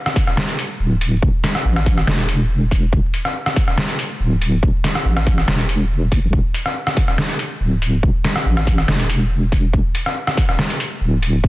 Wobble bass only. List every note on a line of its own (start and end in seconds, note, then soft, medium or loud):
0.80 1.21 D1 medium
1.22 1.33 E1 medium
1.65 2.09 A1 medium
2.07 2.91 E1 loud
2.93 3.03 E1 medium
4.20 4.62 D1 medium
4.63 4.73 E1 medium
5.05 5.49 A1 loud
5.48 6.11 E1 loud
6.12 6.24 F#1 medium
6.23 6.32 B1 medium
6.33 6.43 E1 medium
7.61 8.02 D1 medium
8.03 8.14 E1 loud
8.46 8.90 A1 medium
8.88 9.72 E1 loud
9.73 9.84 E1 medium
11.01 11.42 D1 medium
11.44 11.48 E1 loud